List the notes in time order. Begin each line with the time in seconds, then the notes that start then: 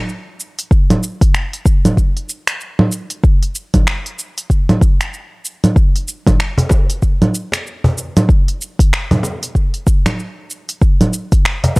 0.09 shaker
0.40 shaker
0.59 open hi-hat, shaker
0.71 kick, shaker
0.90 open hi-hat, low conga
1.03 shaker
1.21 kick, open hi-hat, shaker
1.34 finger snap, shaker
1.53 open hi-hat
1.66 kick, shaker
1.85 open hi-hat, low conga, shaker
1.97 kick, shaker
2.17 open hi-hat
2.29 shaker
2.47 finger snap, open hi-hat, shaker
2.61 shaker
2.79 low conga
2.92 shaker
3.10 open hi-hat, shaker
3.24 kick, shaker
3.43 open hi-hat
3.55 shaker
3.74 kick, open hi-hat, low conga, shaker
3.87 finger snap, shaker
4.06 open hi-hat
4.19 shaker
4.38 open hi-hat, shaker
4.50 kick, shaker
4.69 open hi-hat, low conga
4.81 kick, shaker
5.01 finger snap, open hi-hat, shaker
5.14 shaker
5.45 shaker
5.64 open hi-hat, low conga, shaker
5.76 kick, shaker
5.96 open hi-hat
6.08 shaker
6.27 kick, open hi-hat, low conga, shaker
6.40 finger snap, shaker
6.58 cajon bass, cajon slap, open hi-hat
6.69 kick, cajon slap, shaker
6.90 open hi-hat, shaker
7.02 kick, shaker
7.22 open hi-hat, low conga
7.35 shaker
7.52 finger snap, cajon slap, open hi-hat, shaker
7.67 shaker
7.84 cajon bass
7.98 shaker
8.17 open hi-hat, low conga, shaker
8.29 kick, shaker
8.48 open hi-hat
8.62 shaker
8.79 kick, open hi-hat, shaker
8.93 finger snap, shaker
9.11 cajon bass, cajon slap, open hi-hat, low conga
9.23 cajon slap, shaker
9.43 open hi-hat, shaker
9.55 kick, shaker
9.74 open hi-hat
9.87 kick, shaker
10.06 finger snap, open hi-hat, low conga, shaker
10.19 shaker
10.51 shaker
10.69 open hi-hat, shaker
10.82 kick, shaker
11.01 open hi-hat, low conga
11.13 shaker
11.32 kick, open hi-hat, shaker
11.45 finger snap, shaker
11.64 cajon bass, cajon slap, open hi-hat
11.76 kick, shaker